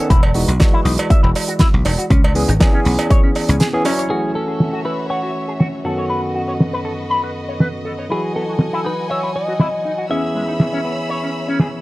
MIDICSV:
0, 0, Header, 1, 8, 480
1, 0, Start_track
1, 0, Tempo, 500000
1, 101, Time_signature, 4, 2, 24, 8
1, 11342, End_track
2, 0, Start_track
2, 0, Title_t, "Violin section"
2, 0, Program_c, 0, 48
2, 3937, Note_on_c, 0, 76, 60
2, 3939, Note_on_c, 0, 66, 66
2, 3941, Note_on_c, 0, 73, 60
2, 5602, Note_off_c, 0, 76, 0
2, 5603, Note_off_c, 0, 66, 0
2, 5604, Note_off_c, 0, 73, 0
2, 5613, Note_on_c, 0, 75, 59
2, 5615, Note_on_c, 0, 71, 60
2, 5618, Note_on_c, 0, 66, 65
2, 7756, Note_off_c, 0, 71, 0
2, 7758, Note_off_c, 0, 66, 0
2, 7781, Note_on_c, 0, 80, 76
2, 7783, Note_on_c, 0, 78, 60
2, 9658, Note_off_c, 0, 75, 0
2, 9682, Note_off_c, 0, 80, 0
2, 9683, Note_off_c, 0, 78, 0
2, 9695, Note_on_c, 0, 88, 61
2, 9696, Note_on_c, 0, 61, 69
2, 9696, Note_on_c, 0, 83, 74
2, 9698, Note_on_c, 0, 73, 62
2, 11342, Note_off_c, 0, 61, 0
2, 11342, Note_off_c, 0, 73, 0
2, 11342, Note_off_c, 0, 83, 0
2, 11342, Note_off_c, 0, 88, 0
2, 11342, End_track
3, 0, Start_track
3, 0, Title_t, "Clean electric guitar"
3, 0, Program_c, 1, 27
3, 3938, Note_on_c, 1, 68, 78
3, 4175, Note_off_c, 1, 68, 0
3, 4178, Note_on_c, 1, 69, 84
3, 4657, Note_off_c, 1, 69, 0
3, 4661, Note_on_c, 1, 71, 88
3, 4892, Note_off_c, 1, 71, 0
3, 4896, Note_on_c, 1, 73, 94
3, 5616, Note_on_c, 1, 66, 72
3, 5640, Note_off_c, 1, 73, 0
3, 6300, Note_off_c, 1, 66, 0
3, 7793, Note_on_c, 1, 68, 77
3, 8022, Note_off_c, 1, 68, 0
3, 8026, Note_on_c, 1, 69, 80
3, 8507, Note_on_c, 1, 71, 81
3, 8517, Note_off_c, 1, 69, 0
3, 8739, Note_off_c, 1, 71, 0
3, 8743, Note_on_c, 1, 73, 91
3, 8979, Note_off_c, 1, 73, 0
3, 8983, Note_on_c, 1, 75, 92
3, 9699, Note_off_c, 1, 75, 0
3, 9703, Note_on_c, 1, 76, 93
3, 11103, Note_off_c, 1, 76, 0
3, 11342, End_track
4, 0, Start_track
4, 0, Title_t, "Clean electric guitar"
4, 0, Program_c, 2, 27
4, 96, Note_on_c, 2, 64, 78
4, 194, Note_off_c, 2, 64, 0
4, 334, Note_on_c, 2, 59, 72
4, 401, Note_off_c, 2, 59, 0
4, 462, Note_on_c, 2, 66, 73
4, 499, Note_off_c, 2, 66, 0
4, 705, Note_on_c, 2, 64, 97
4, 763, Note_off_c, 2, 64, 0
4, 815, Note_on_c, 2, 63, 73
4, 882, Note_off_c, 2, 63, 0
4, 1055, Note_on_c, 2, 76, 78
4, 1154, Note_off_c, 2, 76, 0
4, 1181, Note_on_c, 2, 64, 73
4, 1241, Note_off_c, 2, 64, 0
4, 1424, Note_on_c, 2, 66, 75
4, 1460, Note_off_c, 2, 66, 0
4, 1534, Note_on_c, 2, 64, 98
4, 1601, Note_off_c, 2, 64, 0
4, 1776, Note_on_c, 2, 63, 75
4, 1842, Note_off_c, 2, 63, 0
4, 1904, Note_on_c, 2, 66, 72
4, 1962, Note_off_c, 2, 66, 0
4, 2016, Note_on_c, 2, 61, 78
4, 2114, Note_off_c, 2, 61, 0
4, 2255, Note_on_c, 2, 56, 71
4, 2322, Note_off_c, 2, 56, 0
4, 2382, Note_on_c, 2, 63, 71
4, 2419, Note_off_c, 2, 63, 0
4, 2624, Note_on_c, 2, 61, 99
4, 2682, Note_off_c, 2, 61, 0
4, 2734, Note_on_c, 2, 59, 75
4, 2802, Note_off_c, 2, 59, 0
4, 2977, Note_on_c, 2, 73, 81
4, 3075, Note_off_c, 2, 73, 0
4, 3106, Note_on_c, 2, 61, 73
4, 3163, Note_off_c, 2, 61, 0
4, 3344, Note_on_c, 2, 61, 75
4, 3402, Note_off_c, 2, 61, 0
4, 3457, Note_on_c, 2, 68, 98
4, 3523, Note_off_c, 2, 68, 0
4, 3699, Note_on_c, 2, 61, 77
4, 3738, Note_off_c, 2, 61, 0
4, 3825, Note_on_c, 2, 73, 73
4, 3883, Note_off_c, 2, 73, 0
4, 3934, Note_on_c, 2, 66, 68
4, 4034, Note_off_c, 2, 66, 0
4, 4173, Note_on_c, 2, 61, 65
4, 4241, Note_off_c, 2, 61, 0
4, 4301, Note_on_c, 2, 68, 64
4, 4338, Note_off_c, 2, 68, 0
4, 4541, Note_on_c, 2, 66, 88
4, 4601, Note_off_c, 2, 66, 0
4, 4655, Note_on_c, 2, 64, 63
4, 4722, Note_off_c, 2, 64, 0
4, 4894, Note_on_c, 2, 78, 69
4, 4993, Note_off_c, 2, 78, 0
4, 5023, Note_on_c, 2, 66, 66
4, 5082, Note_off_c, 2, 66, 0
4, 5260, Note_on_c, 2, 68, 65
4, 5298, Note_off_c, 2, 68, 0
4, 5374, Note_on_c, 2, 66, 89
4, 5441, Note_off_c, 2, 66, 0
4, 5614, Note_on_c, 2, 69, 69
4, 5681, Note_off_c, 2, 69, 0
4, 5741, Note_on_c, 2, 73, 63
4, 5801, Note_off_c, 2, 73, 0
4, 5852, Note_on_c, 2, 71, 70
4, 5953, Note_off_c, 2, 71, 0
4, 6094, Note_on_c, 2, 66, 66
4, 6161, Note_off_c, 2, 66, 0
4, 6222, Note_on_c, 2, 73, 66
4, 6259, Note_off_c, 2, 73, 0
4, 6463, Note_on_c, 2, 71, 87
4, 6522, Note_off_c, 2, 71, 0
4, 6575, Note_on_c, 2, 69, 65
4, 6642, Note_off_c, 2, 69, 0
4, 6815, Note_on_c, 2, 83, 71
4, 6914, Note_off_c, 2, 83, 0
4, 6947, Note_on_c, 2, 71, 68
4, 7004, Note_off_c, 2, 71, 0
4, 7186, Note_on_c, 2, 73, 67
4, 7221, Note_off_c, 2, 73, 0
4, 7298, Note_on_c, 2, 71, 88
4, 7363, Note_off_c, 2, 71, 0
4, 7537, Note_on_c, 2, 69, 68
4, 7603, Note_off_c, 2, 69, 0
4, 7667, Note_on_c, 2, 73, 65
4, 7724, Note_off_c, 2, 73, 0
4, 7779, Note_on_c, 2, 64, 72
4, 7876, Note_off_c, 2, 64, 0
4, 8019, Note_on_c, 2, 59, 67
4, 8084, Note_off_c, 2, 59, 0
4, 8143, Note_on_c, 2, 66, 67
4, 8179, Note_off_c, 2, 66, 0
4, 8381, Note_on_c, 2, 64, 89
4, 8441, Note_off_c, 2, 64, 0
4, 8492, Note_on_c, 2, 63, 68
4, 8560, Note_off_c, 2, 63, 0
4, 8733, Note_on_c, 2, 76, 73
4, 8833, Note_off_c, 2, 76, 0
4, 8863, Note_on_c, 2, 64, 66
4, 8922, Note_off_c, 2, 64, 0
4, 9104, Note_on_c, 2, 66, 68
4, 9140, Note_off_c, 2, 66, 0
4, 9216, Note_on_c, 2, 64, 91
4, 9283, Note_off_c, 2, 64, 0
4, 9457, Note_on_c, 2, 63, 68
4, 9523, Note_off_c, 2, 63, 0
4, 9584, Note_on_c, 2, 66, 67
4, 9642, Note_off_c, 2, 66, 0
4, 9697, Note_on_c, 2, 61, 72
4, 9795, Note_off_c, 2, 61, 0
4, 9935, Note_on_c, 2, 56, 67
4, 10002, Note_off_c, 2, 56, 0
4, 10063, Note_on_c, 2, 63, 67
4, 10100, Note_off_c, 2, 63, 0
4, 10300, Note_on_c, 2, 61, 88
4, 10360, Note_off_c, 2, 61, 0
4, 10413, Note_on_c, 2, 59, 68
4, 10481, Note_off_c, 2, 59, 0
4, 10653, Note_on_c, 2, 73, 74
4, 10753, Note_off_c, 2, 73, 0
4, 10787, Note_on_c, 2, 61, 70
4, 10844, Note_off_c, 2, 61, 0
4, 11025, Note_on_c, 2, 61, 94
4, 11111, Note_off_c, 2, 61, 0
4, 11137, Note_on_c, 2, 68, 75
4, 11203, Note_off_c, 2, 68, 0
4, 11342, End_track
5, 0, Start_track
5, 0, Title_t, "Tine electric piano"
5, 0, Program_c, 3, 4
5, 332, Note_on_c, 3, 52, 75
5, 335, Note_on_c, 3, 56, 70
5, 336, Note_on_c, 3, 63, 72
5, 339, Note_on_c, 3, 66, 82
5, 481, Note_off_c, 3, 52, 0
5, 483, Note_off_c, 3, 56, 0
5, 484, Note_off_c, 3, 63, 0
5, 485, Note_off_c, 3, 66, 0
5, 568, Note_on_c, 3, 52, 77
5, 573, Note_on_c, 3, 56, 71
5, 588, Note_on_c, 3, 66, 85
5, 2001, Note_off_c, 3, 52, 0
5, 2004, Note_off_c, 3, 56, 0
5, 2011, Note_off_c, 3, 66, 0
5, 2252, Note_on_c, 3, 52, 78
5, 2257, Note_on_c, 3, 59, 74
5, 2258, Note_on_c, 3, 61, 72
5, 2262, Note_on_c, 3, 68, 88
5, 2401, Note_off_c, 3, 52, 0
5, 2404, Note_off_c, 3, 59, 0
5, 2405, Note_off_c, 3, 61, 0
5, 2407, Note_off_c, 3, 68, 0
5, 2488, Note_on_c, 3, 52, 88
5, 2494, Note_on_c, 3, 59, 80
5, 2501, Note_on_c, 3, 61, 78
5, 2508, Note_on_c, 3, 68, 98
5, 3557, Note_off_c, 3, 52, 0
5, 3560, Note_off_c, 3, 59, 0
5, 3563, Note_off_c, 3, 61, 0
5, 3567, Note_off_c, 3, 68, 0
5, 3583, Note_on_c, 3, 52, 88
5, 3583, Note_on_c, 3, 59, 80
5, 3589, Note_on_c, 3, 61, 80
5, 3591, Note_on_c, 3, 68, 95
5, 3671, Note_off_c, 3, 52, 0
5, 3671, Note_off_c, 3, 59, 0
5, 3674, Note_off_c, 3, 61, 0
5, 3675, Note_off_c, 3, 68, 0
5, 3693, Note_on_c, 3, 54, 95
5, 3695, Note_on_c, 3, 61, 84
5, 3699, Note_on_c, 3, 64, 83
5, 3702, Note_on_c, 3, 73, 100
5, 3926, Note_on_c, 3, 52, 68
5, 3928, Note_off_c, 3, 61, 0
5, 3933, Note_on_c, 3, 57, 61
5, 3939, Note_on_c, 3, 61, 62
5, 3945, Note_on_c, 3, 66, 72
5, 4150, Note_off_c, 3, 54, 0
5, 4153, Note_off_c, 3, 64, 0
5, 4155, Note_off_c, 3, 73, 0
5, 5586, Note_off_c, 3, 52, 0
5, 5590, Note_off_c, 3, 57, 0
5, 5593, Note_off_c, 3, 61, 0
5, 5596, Note_off_c, 3, 66, 0
5, 5609, Note_on_c, 3, 42, 68
5, 5614, Note_on_c, 3, 51, 63
5, 5618, Note_on_c, 3, 59, 61
5, 5624, Note_on_c, 3, 61, 60
5, 5627, Note_on_c, 3, 69, 77
5, 7748, Note_off_c, 3, 42, 0
5, 7751, Note_off_c, 3, 51, 0
5, 7753, Note_off_c, 3, 59, 0
5, 7756, Note_off_c, 3, 61, 0
5, 7757, Note_off_c, 3, 69, 0
5, 7770, Note_on_c, 3, 52, 70
5, 7776, Note_on_c, 3, 54, 65
5, 7790, Note_on_c, 3, 66, 77
5, 9669, Note_off_c, 3, 52, 0
5, 9671, Note_off_c, 3, 54, 0
5, 9678, Note_off_c, 3, 66, 0
5, 9689, Note_on_c, 3, 52, 71
5, 9695, Note_on_c, 3, 59, 67
5, 9702, Note_on_c, 3, 61, 63
5, 9706, Note_on_c, 3, 68, 78
5, 11342, Note_off_c, 3, 52, 0
5, 11342, Note_off_c, 3, 59, 0
5, 11342, Note_off_c, 3, 61, 0
5, 11342, Note_off_c, 3, 68, 0
5, 11342, End_track
6, 0, Start_track
6, 0, Title_t, "Slap bass"
6, 0, Program_c, 4, 36
6, 99, Note_on_c, 4, 28, 97
6, 422, Note_off_c, 4, 28, 0
6, 462, Note_on_c, 4, 35, 82
6, 552, Note_off_c, 4, 35, 0
6, 817, Note_on_c, 4, 35, 81
6, 918, Note_off_c, 4, 35, 0
6, 1187, Note_on_c, 4, 28, 89
6, 1275, Note_off_c, 4, 28, 0
6, 1668, Note_on_c, 4, 35, 80
6, 1755, Note_off_c, 4, 35, 0
6, 1781, Note_on_c, 4, 28, 87
6, 1880, Note_off_c, 4, 28, 0
6, 2021, Note_on_c, 4, 37, 96
6, 2343, Note_off_c, 4, 37, 0
6, 2386, Note_on_c, 4, 32, 82
6, 2474, Note_off_c, 4, 32, 0
6, 2745, Note_on_c, 4, 35, 79
6, 2842, Note_off_c, 4, 35, 0
6, 3350, Note_on_c, 4, 37, 98
6, 3436, Note_off_c, 4, 37, 0
6, 11342, End_track
7, 0, Start_track
7, 0, Title_t, "Muted slap bass strokes"
7, 1059, Note_on_c, 9, 29, 43
7, 1155, Note_off_c, 9, 29, 0
7, 11342, End_track
8, 0, Start_track
8, 0, Title_t, "Drums"
8, 98, Note_on_c, 9, 36, 104
8, 101, Note_on_c, 9, 42, 61
8, 194, Note_off_c, 9, 36, 0
8, 197, Note_off_c, 9, 42, 0
8, 220, Note_on_c, 9, 56, 78
8, 316, Note_off_c, 9, 56, 0
8, 330, Note_on_c, 9, 46, 106
8, 426, Note_off_c, 9, 46, 0
8, 467, Note_on_c, 9, 42, 72
8, 563, Note_off_c, 9, 42, 0
8, 573, Note_on_c, 9, 56, 60
8, 577, Note_on_c, 9, 42, 60
8, 578, Note_on_c, 9, 36, 111
8, 582, Note_on_c, 9, 38, 103
8, 669, Note_off_c, 9, 56, 0
8, 673, Note_off_c, 9, 42, 0
8, 674, Note_off_c, 9, 36, 0
8, 678, Note_off_c, 9, 38, 0
8, 819, Note_on_c, 9, 46, 102
8, 915, Note_off_c, 9, 46, 0
8, 938, Note_on_c, 9, 42, 73
8, 952, Note_on_c, 9, 56, 88
8, 1034, Note_off_c, 9, 42, 0
8, 1048, Note_off_c, 9, 56, 0
8, 1059, Note_on_c, 9, 36, 106
8, 1060, Note_on_c, 9, 42, 59
8, 1155, Note_off_c, 9, 36, 0
8, 1156, Note_off_c, 9, 42, 0
8, 1299, Note_on_c, 9, 46, 108
8, 1305, Note_on_c, 9, 56, 65
8, 1395, Note_off_c, 9, 46, 0
8, 1401, Note_off_c, 9, 56, 0
8, 1426, Note_on_c, 9, 42, 67
8, 1522, Note_off_c, 9, 42, 0
8, 1528, Note_on_c, 9, 42, 67
8, 1530, Note_on_c, 9, 38, 103
8, 1540, Note_on_c, 9, 36, 104
8, 1624, Note_off_c, 9, 42, 0
8, 1626, Note_off_c, 9, 38, 0
8, 1636, Note_off_c, 9, 36, 0
8, 1776, Note_on_c, 9, 46, 97
8, 1781, Note_on_c, 9, 56, 83
8, 1872, Note_off_c, 9, 46, 0
8, 1877, Note_off_c, 9, 56, 0
8, 1909, Note_on_c, 9, 42, 69
8, 2005, Note_off_c, 9, 42, 0
8, 2021, Note_on_c, 9, 36, 106
8, 2022, Note_on_c, 9, 42, 59
8, 2117, Note_off_c, 9, 36, 0
8, 2118, Note_off_c, 9, 42, 0
8, 2154, Note_on_c, 9, 56, 81
8, 2250, Note_off_c, 9, 56, 0
8, 2259, Note_on_c, 9, 46, 99
8, 2355, Note_off_c, 9, 46, 0
8, 2387, Note_on_c, 9, 42, 75
8, 2483, Note_off_c, 9, 42, 0
8, 2500, Note_on_c, 9, 42, 65
8, 2501, Note_on_c, 9, 36, 108
8, 2504, Note_on_c, 9, 56, 65
8, 2507, Note_on_c, 9, 38, 105
8, 2596, Note_off_c, 9, 42, 0
8, 2597, Note_off_c, 9, 36, 0
8, 2600, Note_off_c, 9, 56, 0
8, 2603, Note_off_c, 9, 38, 0
8, 2738, Note_on_c, 9, 46, 93
8, 2834, Note_off_c, 9, 46, 0
8, 2867, Note_on_c, 9, 56, 84
8, 2870, Note_on_c, 9, 42, 79
8, 2963, Note_off_c, 9, 56, 0
8, 2966, Note_off_c, 9, 42, 0
8, 2981, Note_on_c, 9, 36, 108
8, 2982, Note_on_c, 9, 42, 65
8, 3077, Note_off_c, 9, 36, 0
8, 3078, Note_off_c, 9, 42, 0
8, 3218, Note_on_c, 9, 46, 92
8, 3224, Note_on_c, 9, 56, 62
8, 3314, Note_off_c, 9, 46, 0
8, 3320, Note_off_c, 9, 56, 0
8, 3348, Note_on_c, 9, 42, 71
8, 3444, Note_off_c, 9, 42, 0
8, 3455, Note_on_c, 9, 42, 64
8, 3465, Note_on_c, 9, 38, 112
8, 3551, Note_off_c, 9, 42, 0
8, 3561, Note_off_c, 9, 38, 0
8, 3695, Note_on_c, 9, 46, 97
8, 3700, Note_on_c, 9, 56, 87
8, 3791, Note_off_c, 9, 46, 0
8, 3796, Note_off_c, 9, 56, 0
8, 3831, Note_on_c, 9, 42, 74
8, 3927, Note_off_c, 9, 42, 0
8, 4417, Note_on_c, 9, 38, 115
8, 4513, Note_off_c, 9, 38, 0
8, 5134, Note_on_c, 9, 46, 100
8, 5230, Note_off_c, 9, 46, 0
8, 5380, Note_on_c, 9, 38, 112
8, 5476, Note_off_c, 9, 38, 0
8, 6092, Note_on_c, 9, 46, 97
8, 6188, Note_off_c, 9, 46, 0
8, 6340, Note_on_c, 9, 38, 108
8, 6436, Note_off_c, 9, 38, 0
8, 6586, Note_on_c, 9, 46, 99
8, 6682, Note_off_c, 9, 46, 0
8, 7056, Note_on_c, 9, 46, 91
8, 7152, Note_off_c, 9, 46, 0
8, 7299, Note_on_c, 9, 38, 107
8, 7395, Note_off_c, 9, 38, 0
8, 7533, Note_on_c, 9, 46, 100
8, 7629, Note_off_c, 9, 46, 0
8, 8021, Note_on_c, 9, 46, 98
8, 8117, Note_off_c, 9, 46, 0
8, 8244, Note_on_c, 9, 38, 98
8, 8340, Note_off_c, 9, 38, 0
8, 8975, Note_on_c, 9, 46, 97
8, 9071, Note_off_c, 9, 46, 0
8, 9212, Note_on_c, 9, 38, 107
8, 9308, Note_off_c, 9, 38, 0
8, 9462, Note_on_c, 9, 46, 100
8, 9558, Note_off_c, 9, 46, 0
8, 9941, Note_on_c, 9, 46, 105
8, 10037, Note_off_c, 9, 46, 0
8, 10174, Note_on_c, 9, 38, 103
8, 10270, Note_off_c, 9, 38, 0
8, 10428, Note_on_c, 9, 46, 101
8, 10524, Note_off_c, 9, 46, 0
8, 10899, Note_on_c, 9, 46, 101
8, 10995, Note_off_c, 9, 46, 0
8, 11131, Note_on_c, 9, 38, 100
8, 11227, Note_off_c, 9, 38, 0
8, 11342, End_track
0, 0, End_of_file